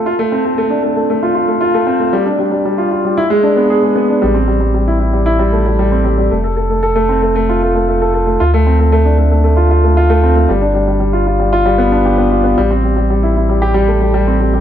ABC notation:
X:1
M:4/4
L:1/16
Q:1/4=115
K:Am
V:1 name="Grand piano"
F A, C A, A, D A, A, A, F F A, F A, C A, | G, D G, G, G, F F G, E ^G, D B, ^G G, B, D | G, C G, G, G, E E G, E G, A, G, G, C G, G, | A, A A A, A A, C A, A, F A, A, A, A A A, |
F A, C A, A, D A, A, A, F F A, F A, C A, | G, D G, G, G, F F G, F G, B, D G B, F B, | G, C G, G, G, E E G, G G, A, G, G, C G, G, |]
V:2 name="Sub bass" clef=bass
z16 | z16 | A,,,16 | F,,,16 |
D,,16 | G,,,16 | A,,,16 |]